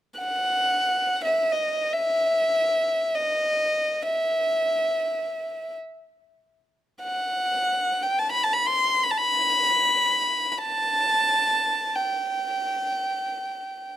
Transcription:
0.18 F#5
1.25 E5
1.52 D#5
1.93 E5
3.15 D#5
4.02 E5
7.03 F#5
8.03 G5
8.19 A5
8.32 B5
8.44 A5
8.53 B5
8.66 C6
9.03 B5
9.11 A5
9.17 B5
10.52 B5
10.58 A5
11.96 G5

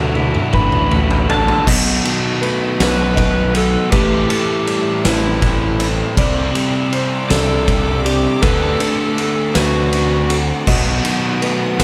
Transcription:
Already playing: D2 D3 A3 F#4 A4 D5 E5 A5
0.02 D3 F#3
0.11 D3 F#3, high tom
0.16 D3 F#3 E4
0.26 D3 F#3
0.34 D3 F#3, mid tom
0.42 D3 F#3
0.49 A1 D3 F#3 B4, mid tom
0.53 D4 B5, kick
0.58 D3 F#3
0.66 D3 F#3
0.72 D3 F#3, mid tom
0.81 D3 F#3
0.89 D3 F#3 A3, mid tom
0.96 D3 F#3
1.03 D3 F#3
1.11 D3 F#3, floor tom
1.20 D3 F#3
1.28 D3 F#3 D4 A4 A5, floor tom
1.35 D3 F#3
1.43 D3 F#3
1.48 D3 F#3, floor tom
1.59 D3 F#3
1.65 B1 B2 F#3 B3 A4 D#5 F#5 B5, kick, crash
2.04 D#3, ride
2.42 A3 B4, ride
2.80 B1 B3 B4, snare, ride
3.16 D#3 D#5, kick, ride
3.54 B3 A4, ride
3.91 A1 A2 E3 A3 G4 A4 B4 E5 G5 A5, kick, ride
4.29 E3 A4, ride
4.67 G3, ride
5.04 A1 C4 E4 B4, snare, ride
5.42 E3, kick, ride
5.79 C4 A4, ride
6.16 C2 C3 G3 C4 D5 D6, kick, ride
6.20 C4
6.55 G3, ride
6.93 C4 C5, ride
7.30 C2 D4 A4, snare, ride
7.68 G3 D5, kick, ride
8.05 D4 G4, ride
8.42 D2 D3 A3 D4 A4 B4 F#5 A5, kick, ride
8.80 D3 A4, ride
9.18 A3, ride
9.55 D2 C4 F#4 B4, snare, ride
9.92 D3, ride
10.29 C4 A4, ride
10.67 B1 B2 F#3 B3 B4 D#5 D#6, kick, crash
11.04 D#3, ride
11.41 A3 B4, ride
11.79 B1 B3 B4, snare, ride

